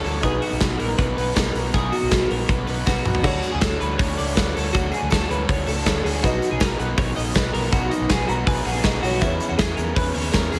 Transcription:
Already playing: F#3 A4
0.04 D2 A3 D4 F#4 C#5, open hi-hat, tambourine
0.21 B1 B2 F#3 B3 D#4 F#4 G#4 B4, kick, closed hi-hat, tambourine
0.42 F#4, open hi-hat, tambourine
0.52 B1
0.60 B1 B3 D#4 F#4 B4, kick, snare, closed hi-hat, tambourine
0.80 A#1 A#4, open hi-hat, tambourine
0.98 B1 B3 D#4 F#4 B4, kick, closed hi-hat
1.17 B1 B3 D#4 F#4 B4, open hi-hat, tambourine
1.36 B1 B3 D#4 F#4 A#4 B4, kick, snare, closed hi-hat, tambourine
1.55 B1 B3 D#4 F#4 B4, open hi-hat, tambourine
1.74 B1 B2 F#3 B3 D#4 F#4 G#4 B4, kick, closed hi-hat, tambourine
1.92 F#4, open hi-hat, tambourine
2.03 B1
2.11 B1 B3 D#4 F#4 B4, kick, snare, closed hi-hat, tambourine
2.30 A#1 A#4, open hi-hat
2.49 B1 B3 D#4 F#4 B4, kick, closed hi-hat
2.67 B1 B3 D#4 F#4 B4, open hi-hat, tambourine
2.86 B1 B3 D#4 F#4 B4, kick, snare, tambourine
3.05 B1 B3 D#4 F#4 B4, mid tom, tambourine
3.15 floor tom
3.22 D2 D3 F#3 A3 D4 F#4 A4 C#5, kick, crash, tambourine
3.26 C#5
3.42 hi-hat pedal, open hi-hat, tambourine
3.51 D2 G#4
3.61 D2 D3 F#3 A3 D4 F#4 A4 C#5, kick, snare, hi-hat pedal, open hi-hat, tambourine
3.80 D2 A3 D4 F#4 B4 C#5, hi-hat pedal, open hi-hat
3.98 D2 A3 D4 F#4 C#5, kick, hi-hat pedal, open hi-hat, tambourine
4.17 C#2 D5, hi-hat pedal, open hi-hat, tambourine
4.36 D2 D3 F#3 A3 D4 F#4 B4 C#5, kick, snare, hi-hat pedal, open hi-hat, tambourine
4.55 D2 A3 D4 F#4 A4 C#5, hi-hat pedal, open hi-hat, tambourine
4.73 D2 D3 F#3 A3 D4 F#4 C#5, kick, hi-hat pedal, open hi-hat, tambourine
4.92 G#4, hi-hat pedal, open hi-hat, tambourine
5.02 D2
5.10 D2 D3 F#3 A3 D4 F#4 A4 C#5, kick, snare, hi-hat pedal, open hi-hat, tambourine
5.29 D2 A3 D4 F#4 B4 C#5, hi-hat pedal, open hi-hat, tambourine
5.47 D2 A3 D4 F#4 C#5, kick, hi-hat pedal, open hi-hat
5.67 C#2 A4, hi-hat pedal, open hi-hat, tambourine
5.86 D2 D3 F#3 A3 D4 F#4 C#5, kick, snare, hi-hat pedal, open hi-hat, tambourine
6.04 D2 A3 D4 F#4 G#4 C#5, hi-hat pedal, open hi-hat, tambourine
6.22 B1 B2 F#3 B3 D#4 F#4 B4 D#5, kick, hi-hat pedal, open hi-hat, tambourine
6.42 hi-hat pedal, open hi-hat, tambourine
6.51 B1 G#4
6.60 B1 B2 F#3 B3 D#4 F#4 A#4 B4, kick, snare, hi-hat pedal, open hi-hat, tambourine
6.78 B1 B3 D#4 F#4 B4, hi-hat pedal, open hi-hat
6.97 B1 B3 D#4 F#4 B4 C#5, kick, hi-hat pedal, open hi-hat
7.16 A#1 D#5, hi-hat pedal, open hi-hat, tambourine
7.34 B1 B2 F#3 B3 D#4 F#4 B4, kick, snare, hi-hat pedal, open hi-hat, tambourine
7.53 B1 B3 D#4 F#4 A#4 B4, hi-hat pedal, open hi-hat, tambourine
7.71 B1 B2 F#3 B3 D#4 F#4 B4, kick, hi-hat pedal, open hi-hat, tambourine
7.90 D#4, hi-hat pedal, open hi-hat, tambourine
8.01 B1
8.09 B1 B2 F#3 B3 D#4 F#4 G#4 B4, kick, snare, hi-hat pedal, open hi-hat, tambourine
8.27 B1 B3 D#4 F#4 B4 A#5, hi-hat pedal, open hi-hat
8.45 B1 B3 D#4 F#4 B4 G#5, kick, hi-hat pedal, open hi-hat, tambourine
8.65 A#1 G#4 F#5, hi-hat pedal, open hi-hat, tambourine
8.83 B1 B2 F#3 B3 D#4 F#4 B4 D#5, kick, snare, hi-hat pedal, open hi-hat, tambourine
9.01 B1 B3 D#4 F#4 B4 C#5, hi-hat pedal, open hi-hat, tambourine
9.20 E2 E3 B3 C#4 E4 G#4 B4, kick, hi-hat pedal, open hi-hat, tambourine
9.25 C#5
9.40 hi-hat pedal, open hi-hat, tambourine
9.49 E2 F#4
9.58 E2 E3 B3 C#4 G#4, kick, snare, hi-hat pedal, open hi-hat, tambourine
9.77 E2 B3 C#4 G#4 A#4, hi-hat pedal, open hi-hat, tambourine
9.95 E2 E3 B3 C#4 G#4 B4, kick, hi-hat pedal, open hi-hat
10.14 D#2 C#5, hi-hat pedal, open hi-hat, tambourine
10.32 E2 E3 B3 C#4 G#4 A#4, kick, snare, open hi-hat, tambourine
10.51 E2 B3 C#4 G#4, hi-hat pedal, open hi-hat, tambourine

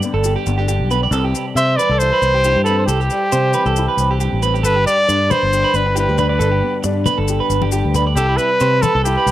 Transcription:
Already playing: G2 D4 G4
0.03 D3 B3, maracas
0.14 G1 A4
0.24 G4, maracas
0.36 G4
0.46 G1 B3, maracas
0.58 D4 G4
0.68 G2 G4, maracas
0.80 B1
0.91 B3 B4, maracas
1.03 D5
1.11 C2 C3 A4, maracas
1.24 G4
1.35 G3, maracas
1.55 C3 C5 E5, muted nylon-string guitar stroke, maracas
1.77 E3 G3 B4 D5, maracas
1.89 C2 A4
1.99 E4 C5, maracas
2.13 B4
2.22 C2, muted nylon-string guitar stroke, maracas
2.34 G4
2.44 G2 E4 G4, maracas
2.56 G2
2.64 A4 B4, maracas
2.69 C4
2.79 C5
2.86 C2 G4 A4, maracas
3.00 G4, maracas
3.10 G3, maracas
3.32 C3 C4 C5, maracas
3.53 E3 B4, maracas
3.65 C2 A4, maracas
3.76 E4, maracas
3.88 B4
3.97 C2 C4, maracas
4.11 G4
4.20 G2 G4, maracas
4.33 A1
4.43 C4 B4, maracas
4.54 G4, maracas
4.63 G1 G2 A4 B4, maracas
4.76 G4
4.87 G3 D5, maracas
5.09 G2 D4 D5, maracas
5.30 D3 G3 B4 C5, high conga, low conga, maracas
5.43 G1
5.53 G4, maracas
5.64 B4
5.74 G1 D4 B4, maracas
5.86 muted clean electric guitar stroke
5.95 G2 E4 G4 B4, maracas
6.08 D2 G4
6.18 D4 B4, low conga, maracas
6.29 D5
6.39 G1 G2 A4, maracas
6.52 G4
6.62 B3
6.84 G2 D4, muted clean electric guitar stroke, maracas
7.06 D3 B3 B4, high conga, low conga, maracas
7.18 G1 A4
7.28 G4, maracas
7.40 B4
7.49 G1 D4, maracas
7.62 G4, high conga
7.72 G2 G4, maracas
7.84 D2
7.94 D4 B4, low conga, maracas
8.07 D5
8.15 C2 C3 G4 A4, maracas
8.29 E4
8.37 G3 B4, maracas
8.60 C3 C4 C5, maracas
8.82 A4 B4, muted nylon-string guitar stroke, high conga, low conga, maracas
8.95 C2 A4
9.04 E4 G4, maracas
9.17 B4
9.26 C2, maracas

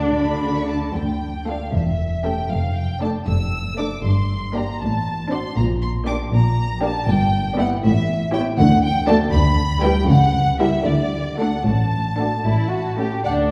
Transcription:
Already playing: D4 D5
0.01 F#5
0.14 D2 D3 B5
0.57 C#6
0.68 A5 D6
0.94 D2 G5
1.46 A3 D4 F4 A4 F5
1.72 E1 E2 E5
2.24 A3 C#4 G4 A4 G5
2.50 F1 F2 F5
2.75 G5
3.01 A3 D4 A4 D5 A5
3.26 F1 F2 E6
3.78 A3 D4 A4 D5 D6
4.03 G1 G2 C6
4.55 A#3 D4 G4 D5 A#5
4.80 A1 A2 A5
5.31 C4 D4 F#4 D5 C6
5.56 A#1 A#2 A#5
5.81 C6
6.07 A#3 D4 G4 D5 D6
6.32 A#1 A#2 A#5
6.82 A#3 D4 G4 D5 A5
7.08 G1 G2 G5
7.58 B3 E4 G4 D5 F#5
7.83 A1 A2 E5
8.33 B3 E4 G4 C#5 G5
8.58 D2 D3 F#5
8.83 G5
9.07 A3 D4 F#4 D5 A5
9.31 D2 D3 B5
9.82 G3 E4 G4 B4 G5
10.08 C#2 C#3 F#5
10.60 G3 E4 G4 A#4 E5
10.86 D2 D3 D5
11.39 A3 D4 F#4 A4 F#5
11.65 A1 A2 A5
12.18 A3 D4 F#4 A4
12.45 A1 A2 E4
12.71 F#4
12.98 A3 C#4 G4
13.24 D2 D4 A4 D5 F#5

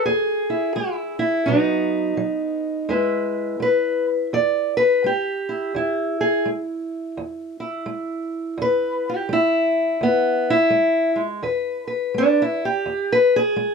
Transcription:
0.06 E2 G#4
0.50 E4
0.76 G#3 E4
1.19 E4
1.46 B2 F#3 B3 D#4
2.17 F#3
2.89 E2 G#3 E4 B4
3.60 G#3 B4
4.33 E2 D5
4.77 B4
5.04 G#3 G4
5.49 E4
5.75 E2 E4
6.21 G#4
6.45 G#3
7.17 E2
7.60 E4
7.86 G#3
8.58 E2
8.62 B4
9.09 G4
9.29 G#3 E4
10.01 E2 B3
10.50 E4
10.70 G#3
11.16 G#3
11.43 E2 B4
11.87 B4
12.14 G#3 D4
12.42 E4
12.65 G4
12.86 E2
13.12 B4
13.36 G#4
13.56 G#3

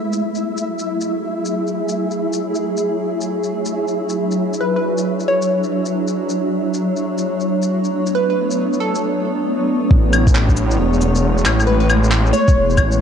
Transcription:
Already playing: F#3 A3 B3 E4 G#4 E5
0.13 shaker
0.35 shaker
0.57 shaker
0.79 shaker
0.92 C#5
1.01 shaker
1.45 shaker
1.67 shaker
1.89 shaker
2.11 shaker
2.33 shaker
2.55 shaker
2.77 shaker
2.95 D4
3.21 shaker
3.44 shaker
3.66 shaker
3.88 shaker
4.09 shaker
4.31 shaker
4.53 shaker
4.60 B4
4.76 B4
4.98 shaker
5.20 shaker
5.28 C#5
5.42 shaker
5.64 shaker
5.86 shaker
6.07 shaker
6.29 shaker
6.55 A3 B3
6.74 shaker
6.96 shaker
7.18 shaker
7.40 shaker
7.62 shaker
7.84 shaker
8.06 shaker
8.15 B4
8.30 B4
8.51 shaker
8.73 shaker
8.80 A4
8.95 shaker
9.90 A1 G#3, kick
10.13 cabasa, claves
10.27 kick, shaker
10.35 clap
10.49 kick, shaker
10.57 cabasa
10.71 shaker
10.79 E1
10.87 E4
10.93 shaker
11.01 cabasa
11.15 shaker
11.38 shaker
11.45 A1, clap, cabasa, claves
11.60 claves, shaker
11.67 B4
11.80 B4
11.89 cabasa, claves
12.04 shaker
12.11 clap
12.26 shaker
12.33 C#5, cabasa
12.48 kick, shaker
12.56 E1
12.70 shaker
12.77 A1, kick, cabasa, claves
12.92 shaker

